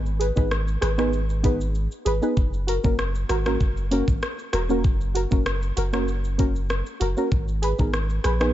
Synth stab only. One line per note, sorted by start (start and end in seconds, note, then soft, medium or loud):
0.19 0.26 G#4 medium
0.19 0.27 B4 loud
0.36 0.48 B3 medium
0.36 0.48 D#4 medium
0.36 0.48 G#4 medium
0.36 0.49 B4 medium
0.81 0.88 G#4 medium
0.81 0.89 B4 loud
0.98 1.10 B3 medium
0.98 1.10 D#4 medium
0.98 1.10 G#4 medium
0.98 1.11 B4 medium
1.43 1.57 B3 medium
1.43 1.57 D#4 medium
1.43 1.57 G#4 medium
1.43 1.57 B4 loud
2.05 2.12 G#4 medium
2.05 2.13 B4 loud
2.22 2.34 B3 medium
2.22 2.34 D#4 medium
2.22 2.34 G#4 medium
2.22 2.34 B4 loud
2.67 2.74 F#4 medium
2.67 2.75 A#4 loud
2.84 2.96 A#3 medium
2.84 2.96 C#4 medium
2.84 2.96 F#4 medium
2.84 2.96 A#4 medium
3.29 3.36 F#4 medium
3.29 3.37 A#4 loud
3.45 3.57 A#3 medium
3.45 3.58 C#4 medium
3.45 3.58 F#4 medium
3.45 3.58 A#4 medium
3.91 4.04 A#3 loud
3.91 4.05 C#4 medium
3.91 4.05 F#4 medium
3.91 4.05 A#4 loud
4.53 4.60 F#4 medium
4.53 4.60 A#4 loud
4.69 4.81 A#3 medium
4.69 4.81 C#4 medium
4.69 4.82 F#4 medium
4.69 4.82 A#4 loud
5.15 5.21 F#4 medium
5.15 5.22 A#4 medium
5.31 5.43 A#3 medium
5.31 5.43 C#4 medium
5.31 5.43 F#4 medium
5.31 5.44 A#4 medium
5.76 5.83 F#4 medium
5.76 5.84 A#4 loud
5.93 6.05 A#3 medium
5.93 6.05 C#4 medium
5.93 6.05 F#4 medium
5.93 6.06 A#4 medium
6.38 6.52 A#3 medium
6.38 6.52 C#4 medium
6.38 6.52 F#4 medium
6.38 6.52 A#4 loud
7.00 7.07 F#4 medium
7.00 7.08 A#4 loud
7.16 7.28 A#3 medium
7.16 7.29 C#4 medium
7.16 7.29 F#4 medium
7.16 7.29 A#4 medium
7.62 7.69 G#4 medium
7.62 7.70 B4 loud
7.78 7.90 B3 medium
7.78 7.91 D#4 medium
7.78 7.91 G#4 medium
7.78 7.91 A#4 medium
8.24 8.31 G#4 medium
8.24 8.32 B4 loud
8.40 8.52 B3 medium
8.40 8.52 D#4 medium
8.40 8.53 G#4 medium
8.40 8.53 B4 loud